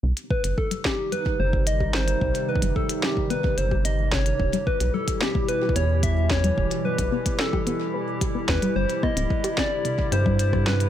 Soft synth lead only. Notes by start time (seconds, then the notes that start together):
0.31 B4
0.58 A4
0.85 G4
1.12 B4
1.40 C5
1.67 D#5
1.94 C5
2.49 B4
2.76 A4
3.03 G4
3.30 B4
3.58 C5
3.85 D#5
4.12 C#5
4.67 B4
4.94 A4
5.21 G4
5.49 B4
5.76 C#5
6.03 E5
6.31 C#5
6.85 B4
7.40 A4
8.49 B4
8.76 C5
9.03 D#5
9.58 D5
10.12 C5
10.40 C5
10.67 B4